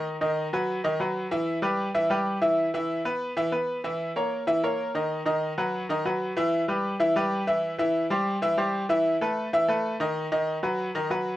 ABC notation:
X:1
M:4/4
L:1/8
Q:1/4=190
K:Bphr
V:1 name="Upright piano"
[^D,^D^d] [D,Dd]2 [F,FB]2 [D,Dd] [F,FB]2 | [E,Ee]2 [G,GB]2 [E,Ee] [G,GB]2 [E,Ee]- | [E,Ee] [E,Ee]2 [B,B]2 [E,Ee] [B,B]2 | [E,Ee]2 [^A,^A^c]2 [E,Ee] [A,Ac]2 [^D,^D^d]- |
[^D,^D^d] [D,Dd]2 [F,FB]2 [D,Dd] [F,FB]2 | [E,Ee]2 [G,GB]2 [E,Ee] [G,GB]2 [E,Ee]- | [E,Ee] [E,Ee]2 [G,Gc]2 [E,Ee] [G,Gc]2 | [E,Ee]2 [A,AB]2 [E,Ee] [A,AB]2 [^D,^D^d]- |
[^D,^D^d] [D,Dd]2 [F,FB]2 [D,Dd] [F,FB]2 |]